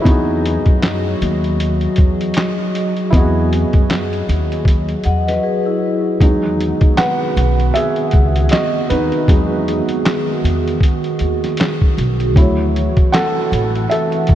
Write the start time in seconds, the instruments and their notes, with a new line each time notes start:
Already playing: ambient pad F#3 F#4 G#4 D#5
0.02 upright bass E2, felt piano B3 E4, kick
0.06 felt piano D#4 F#4, closed hi-hat
0.10 felt piano G#4
0.46 closed hi-hat
0.66 upright bass F#2, kick, closed hi-hat
0.83 snare, clap, closed hi-hat
1.21 upright bass D#2, closed hi-hat
1.44 closed hi-hat
1.60 closed hi-hat
1.81 closed hi-hat
1.96 upright bass E2, kick, closed hi-hat
2.21 closed hi-hat
2.34 snare, clap, closed hi-hat
2.75 closed hi-hat
2.97 closed hi-hat
3.11 upright bass E2, felt piano B3 E4, kick, closed hi-hat
3.15 felt piano F#4 D#5
3.19 felt piano G#4
3.53 closed hi-hat
3.73 upright bass F#2, kick, closed hi-hat
3.90 snare, clap, closed hi-hat
4.13 closed hi-hat
4.29 upright bass D#2, closed hi-hat
4.52 closed hi-hat
4.65 kick, closed hi-hat
4.89 closed hi-hat
5.04 upright bass E2, vibraphone D#5 F#5, closed hi-hat
5.28 vibraphone B4 D#5, snare, closed hi-hat
5.43 vibraphone G#4 B4
5.66 vibraphone E4 G#4
6.21 upright bass E2, ambient pad D#3 B3 F#4 G#4, felt piano F#3 G#3 D#4, kick, closed hi-hat
6.61 closed hi-hat
6.81 kick, closed hi-hat
6.97 felt piano B4 F#5, snare, clap, closed hi-hat
7.37 upright bass B1, closed hi-hat
7.60 closed hi-hat
7.74 felt piano G#4 E5, closed hi-hat
7.96 closed hi-hat
8.11 upright bass C#2, kick, closed hi-hat
8.36 closed hi-hat
8.49 felt piano D#5, snare, clap, closed hi-hat
8.53 felt piano F#4
8.90 upright bass D#2, felt piano D#4 B4, closed hi-hat
9.12 closed hi-hat
9.28 upright bass E2, felt piano F#3 G#3 D#4, kick, closed hi-hat
9.68 closed hi-hat
9.89 closed hi-hat
10.05 snare, clap, closed hi-hat
10.44 upright bass E2, closed hi-hat
10.68 closed hi-hat
10.81 kick, closed hi-hat
11.04 closed hi-hat
11.19 upright bass D#2, closed hi-hat
11.44 snare, closed hi-hat
11.57 snare, clap, closed hi-hat
11.82 kick
11.98 upright bass B1, closed hi-hat
12.20 closed hi-hat
12.36 upright bass D2, ambient pad E3 A3 E4 F#4, felt piano F#3 E4 C#5, kick, closed hi-hat
12.76 closed hi-hat
12.97 kick, closed hi-hat
13.13 felt piano A4 F#5, snare, clap, closed hi-hat
13.52 upright bass A1, closed hi-hat
13.75 closed hi-hat
13.90 felt piano A4 E5, closed hi-hat
14.12 closed hi-hat
14.27 upright bass B1, kick, closed hi-hat